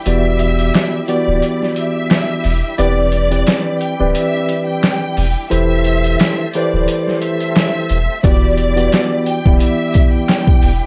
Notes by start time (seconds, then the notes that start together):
Already playing: E3 G3 D4 B4
0.06 E1 E3 B3 F#4 G4 D5 E5, closed hi-hat
0.39 closed hi-hat
0.59 closed hi-hat
0.74 finger snap, snare, closed hi-hat
1.08 E3 B3 F#4 G4 D5, closed hi-hat
1.28 D1
1.42 closed hi-hat
1.62 snare
1.76 E5, closed hi-hat
2.10 finger snap, snare, closed hi-hat
2.44 E1, open hi-hat
2.78 E1 E3 B3 C4 D4 G4 B4 D5, closed hi-hat
3.12 closed hi-hat
3.31 E3 C4 G4 B4 D5, closed hi-hat
3.47 finger snap, snare, closed hi-hat
3.80 G5, closed hi-hat
3.99 D1 E3 C4 G4 B4 D5
4.15 E5, closed hi-hat
4.49 closed hi-hat
4.66 G5
4.83 finger snap, snare, closed hi-hat
5.17 E1, open hi-hat
5.50 E1 E3 A3 C4 E4 G4 A4 B4 C5 E5, closed hi-hat
5.85 closed hi-hat
6.04 closed hi-hat
6.19 finger snap, snare, closed hi-hat
6.54 E3 E4 G4 A4 B4 C5 D5, closed hi-hat
6.73 D1
6.88 closed hi-hat
7.08 snare
7.21 E5, closed hi-hat
7.40 closed hi-hat
7.56 finger snap, snare, closed hi-hat
7.90 E1, closed hi-hat
8.23 E1 E3 G3 B3 D4 F#4 G4 B4 D5, kick, closed hi-hat
8.57 closed hi-hat
8.76 E3 B3 F#4 G4 D5, closed hi-hat
8.92 finger snap, snare, closed hi-hat
9.26 G5, closed hi-hat
9.46 D1 E3 B3 E4 G4 D5, kick
9.60 E5, closed hi-hat
9.94 kick, closed hi-hat
10.13 G5
10.28 finger snap, snare, closed hi-hat
10.47 kick
10.62 E1, open hi-hat